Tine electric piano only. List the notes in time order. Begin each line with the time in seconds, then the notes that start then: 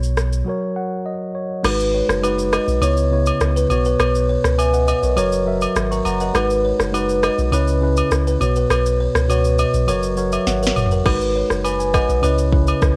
Already playing: B2 B3 F#4 C#5
0.44 F#3 F#4 A#4
0.49 C#5
0.76 F#5
1.06 D#5
1.35 C#5
1.63 G#3 D#4 F#4 B4
2.22 G#3 D#4 F#4 B4
2.81 C#3 B3 E4 C#5
3.10 C#3 B3 E4 C#5
3.69 B2 B3 F#4 C#5
4.58 E5 G#5
4.74 D#5 F#5
4.88 B4 D#5
5.03 A#4 C#5
5.16 F#3 F#4 A#4 C#5
5.45 F#3 F#4 A#4 E5
5.91 A#5 C#6
6.05 F#5 A#5
6.21 D#5 F#5
6.33 G#3 D#4 F#4 B4
6.92 G#3 D#4 F#4 B4
7.51 C#3 C#4 E4 B4
7.80 C#3 C#4 E4 B4
8.39 B2 B3 F#4 C#5
9.28 B2 B3 F#4 C#5
9.87 F#3 F#4 A#4 C#5
10.16 F#3 F#4 A#4 C#5
10.32 E5
10.47 F#5
11.04 G#3 D#4 F#4 B4
11.64 G#5 B5
11.79 G#5
11.94 D#5 F#5
12.09 B4 D#5
12.22 C#3 C#4 E4 B4
12.51 C#3 C#4 E4 B4